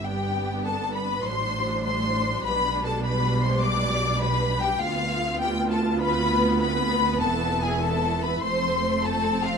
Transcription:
0.00 1.21 G1 soft
0.00 1.21 G2 soft
0.00 0.64 G5 medium
0.04 1.21 B3 soft
0.04 4.77 D4 medium
0.04 0.63 G4 medium
0.65 0.95 A4 medium
0.65 0.94 A5 medium
0.94 1.26 B4 medium
0.94 1.24 B5 medium
1.24 2.42 A1 soft
1.24 2.42 A2 medium
1.24 2.40 F#3 medium
1.24 1.85 C5 medium
1.24 1.84 C6 medium
1.85 2.44 C5 medium
1.85 2.43 C6 medium
2.44 4.78 B1 medium
2.44 4.78 B2 medium
2.44 4.78 G3 medium
2.44 2.85 B4 medium
2.44 2.83 B5 medium
2.85 3.04 A4 medium
2.85 3.04 A5 medium
3.04 3.42 B4 medium
3.04 3.43 B5 medium
3.42 3.62 C5 medium
3.42 3.62 C6 medium
3.62 4.22 D5 medium
3.62 4.21 D6 medium
4.21 4.62 B4 medium
4.21 4.61 B5 medium
4.62 4.82 G4 medium
4.62 4.82 G5 medium
4.81 7.18 D2 medium
4.81 8.40 B3 medium
4.81 5.40 F4 medium
4.81 7.19 F4 medium
4.81 5.41 F5 medium
5.41 5.50 G4 medium
5.41 5.70 G5 medium
5.71 5.80 A4 medium
5.71 6.00 A5 medium
6.00 6.60 B4 medium
6.00 6.59 B5 medium
6.61 7.21 B4 medium
6.61 7.20 B5 medium
7.20 8.44 E1 medium
7.20 8.44 E2 medium
7.20 8.39 E4 medium
7.20 7.62 A4 medium
7.20 7.61 A5 medium
7.62 7.82 G#4 medium
7.62 7.83 G#5 medium
7.82 8.22 A4 medium
7.82 8.23 A5 medium
8.23 8.44 B4 medium
8.23 8.43 B5 medium
8.42 9.58 F1 medium
8.42 9.58 F2 medium
8.42 9.58 A3 medium
8.42 9.58 C4 medium
8.42 9.03 C5 medium
8.42 9.02 C6 medium
9.04 9.44 A4 medium
9.04 9.44 A5 medium
9.44 9.58 F4 medium
9.44 9.58 F5 medium

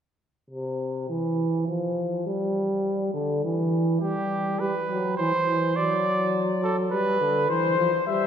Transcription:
0.50 1.06 C3 medium
1.09 1.67 E3 medium
1.68 2.26 F3 medium
2.27 3.13 G3 medium
3.14 3.43 D3 medium
3.44 4.01 E3 medium
4.01 4.59 G3 medium
4.01 4.61 G4 medium
4.60 4.74 G3 medium
4.60 5.17 B4 medium
4.90 5.18 F#3 medium
5.17 5.32 E3 medium
5.17 5.78 C5 medium
5.49 5.76 E3 medium
5.76 6.90 F#3 medium
5.76 6.63 D5 medium
6.63 6.76 A4 medium
6.91 7.20 G3 medium
6.91 7.49 B4 medium
7.21 7.49 D3 medium
7.49 7.77 E3 medium
7.49 8.04 C5 medium
7.49 8.07 C5 medium
7.78 7.91 F3 medium
8.07 8.27 G3 medium
8.07 8.27 C5 medium
8.07 8.27 E5 medium

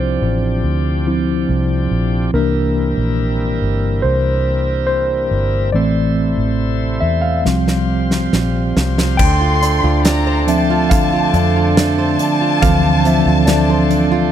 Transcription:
0.00 0.18 C2 medium
0.00 7.42 C3 medium
0.00 0.18 F3 soft
0.00 2.31 F3 soft
0.00 0.19 C4 soft
0.00 2.31 D4 soft
0.00 0.19 E4 soft
0.00 2.31 G4 medium
0.00 2.36 C5 medium
0.22 0.62 A1 medium
0.64 1.45 D2 medium
1.07 1.45 F3 soft
1.07 1.46 C4 soft
1.07 1.46 E4 soft
1.49 1.89 C2 medium
1.91 2.31 A#1 medium
2.34 2.93 C2 medium
2.34 2.90 E3 soft
2.34 5.71 G3 medium
2.34 2.90 A#3 soft
2.34 2.91 D4 soft
2.34 5.71 E4 medium
2.34 4.09 A#4 medium
2.34 5.70 A#4 medium
2.97 3.57 A#1 medium
3.61 4.01 G1 medium
4.02 5.27 C2 medium
4.02 4.85 C5 medium
4.87 5.75 C5 medium
5.31 5.71 G1 medium
5.72 6.34 A1 medium
5.72 6.98 E3 soft
5.72 6.98 A3 soft
5.72 7.44 A3 soft
5.72 6.99 C4 medium
5.72 7.44 E4 medium
5.72 9.17 C5 medium
5.72 6.54 D5 medium
6.38 6.98 A1 medium
7.00 7.42 E2 medium
7.00 7.21 E5 medium
7.22 8.71 F5 medium
7.45 8.28 C2 medium
7.45 9.18 C3 medium
7.45 8.72 F3 soft
7.45 8.72 G3 soft
7.45 9.18 G3 soft
7.45 8.72 C4 soft
7.45 9.18 F4 medium
7.45 snare soft
7.68 snare soft
8.11 snare medium
8.33 8.73 A#1 medium
8.33 snare medium
8.76 9.16 C2 medium
8.76 snare medium
8.98 snare medium
9.17 9.79 D2 loud
9.17 14.32 D3 medium
9.17 10.90 D3 medium
9.17 14.32 A3 medium
9.17 14.32 D4 medium
9.17 14.32 C5 medium
9.17 10.86 G5 loud
9.17 10.01 C6 medium
9.17 kick medium
9.17 crash medium
9.41 9.83 F4 medium
9.63 10.04 D4 medium
9.63 closed hi-hat medium
9.84 11.30 D2 medium
9.84 10.69 F4 medium
10.05 10.47 D4 medium
10.05 10.45 A#5 medium
10.05 snare medium
10.05 closed hi-hat medium
10.27 11.98 C5 medium
10.47 11.73 F3 soft
10.47 11.73 C4 soft
10.47 11.33 D4 medium
10.47 11.73 E5 medium
10.47 11.77 A5 medium
10.47 closed hi-hat medium
10.70 11.12 F4 medium
10.90 12.61 D3 medium
10.90 12.58 F5 medium
10.90 kick medium
10.90 closed hi-hat medium
11.13 11.55 F4 medium
11.34 12.15 F2 medium
11.34 11.76 D4 medium
11.34 closed hi-hat medium
11.56 12.40 F4 medium
11.77 12.19 D4 medium
11.77 14.29 A5 loud
11.77 snare loud
11.77 closed hi-hat medium
11.98 13.70 C5 medium
12.19 13.04 D4 medium
12.19 closed hi-hat medium
12.41 12.83 F4 soft
12.62 13.22 D2 loud
12.62 14.32 D3 medium
12.62 13.01 E3 medium
12.62 13.01 F3 soft
12.62 13.01 C4 soft
12.62 13.50 F5 loud
12.62 kick loud
12.62 closed hi-hat medium
12.84 13.26 F4 medium
13.05 14.28 F3 medium
13.05 14.29 C4 medium
13.05 13.47 D4 medium
13.05 14.29 E5 medium
13.05 closed hi-hat medium
13.26 14.32 D2 medium
13.26 14.10 F4 medium
13.47 13.89 D4 medium
13.47 14.32 D5 medium
13.47 snare loud
13.47 closed hi-hat medium
13.70 14.32 C5 medium
13.90 14.32 D4 medium
13.90 closed hi-hat medium
14.12 14.32 F4 medium

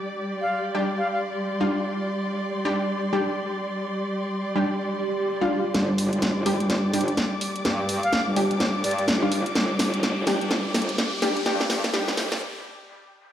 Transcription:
0.00 12.41 G3 medium
0.00 12.41 G4 medium
0.00 12.41 D5 medium
0.00 0.44 D6 medium
0.28 7.40 C6 medium
0.41 0.59 F5 medium
0.75 0.88 G3 medium
0.75 0.88 D4 medium
0.75 0.88 G4 medium
0.98 1.08 F5 medium
1.13 1.19 F5 medium
1.60 1.76 G3 medium
1.60 1.76 D4 medium
1.60 1.76 F4 medium
2.65 2.78 G3 medium
2.65 2.78 D4 medium
2.65 2.78 G4 loud
3.13 3.31 G3 medium
3.13 3.31 D4 medium
3.13 3.31 G4 medium
4.55 4.69 G3 medium
4.55 4.69 D4 medium
4.55 4.69 G4 medium
4.79 swell medium
5.41 5.57 G3 medium
5.41 5.57 D4 medium
5.41 5.57 F4 medium
5.74 6.10 G1 loud
5.74 snare soft
5.74 closed hi-hat medium
5.74 riser medium
5.98 open hi-hat loud
6.13 6.58 G1 loud
6.13 closed hi-hat medium
6.22 12.41 D6 medium
6.22 snare soft
6.22 closed hi-hat medium
6.46 6.59 G3 medium
6.46 6.59 D4 medium
6.46 6.59 G4 loud
6.46 open hi-hat loud
6.60 6.92 G1 medium
6.60 closed hi-hat medium
6.70 snare soft
6.70 closed hi-hat medium
6.94 7.16 G1 medium
6.94 7.12 G3 medium
6.94 7.12 D4 medium
6.94 7.12 G4 medium
6.94 open hi-hat loud
7.01 closed hi-hat medium
7.08 closed hi-hat medium
7.17 snare medium
7.17 closed hi-hat medium
7.41 open hi-hat loud
7.56 closed hi-hat medium
7.65 8.01 G2 loud
7.65 snare medium
7.65 closed hi-hat medium
7.89 open hi-hat loud
8.03 8.21 F5 medium
8.03 closed hi-hat medium
8.13 snare medium
8.13 closed hi-hat medium
8.27 8.49 G1 medium
8.36 8.50 G3 medium
8.36 8.50 D4 medium
8.36 8.50 G4 medium
8.36 open hi-hat loud
8.51 8.83 G1 medium
8.51 closed hi-hat soft
8.60 snare medium
8.60 closed hi-hat medium
8.84 9.06 G2 loud
8.84 8.93 D5 medium
8.84 open hi-hat loud
8.91 closed hi-hat medium
8.98 9.04 D5 medium
8.98 closed hi-hat medium
9.08 9.44 G1 medium
9.08 snare medium
9.08 closed hi-hat medium
9.22 9.38 G3 medium
9.22 9.38 D4 medium
9.22 9.38 F4 medium
9.32 open hi-hat loud
9.46 closed hi-hat medium
9.55 9.91 G1 loud
9.55 snare medium
9.55 closed hi-hat medium
9.79 snare medium
9.79 open hi-hat loud
9.94 10.39 G1 loud
9.94 closed hi-hat medium
10.03 snare medium
10.03 closed hi-hat medium
10.27 10.40 G3 medium
10.27 10.40 D4 medium
10.27 10.40 G4 medium
10.27 snare medium
10.27 open hi-hat loud
10.41 10.73 G1 loud
10.41 closed hi-hat soft
10.51 snare medium
10.51 closed hi-hat medium
10.75 10.97 G1 loud
10.75 snare medium
10.75 open hi-hat loud
10.82 closed hi-hat medium
10.89 closed hi-hat medium
10.98 snare medium
10.98 closed hi-hat medium
11.22 11.35 G3 medium
11.22 11.35 D4 medium
11.22 11.35 G4 loud
11.22 snare medium
11.22 open hi-hat loud
11.37 closed hi-hat soft
11.46 11.82 G2 loud
11.46 11.59 G3 loud
11.46 11.59 D4 medium
11.46 11.59 G4 loud
11.46 snare medium
11.46 closed hi-hat medium
11.60 snare medium
11.70 snare loud
11.70 open hi-hat loud
11.84 snare medium
11.84 closed hi-hat medium
11.94 12.07 G3 loud
11.94 12.07 D4 medium
11.94 12.07 G4 loud
11.94 snare loud
11.94 closed hi-hat medium
12.08 12.30 G1 loud
12.08 snare medium
12.17 snare medium
12.17 open hi-hat loud
12.32 12.41 G1 loud
12.32 snare medium
12.32 closed hi-hat soft

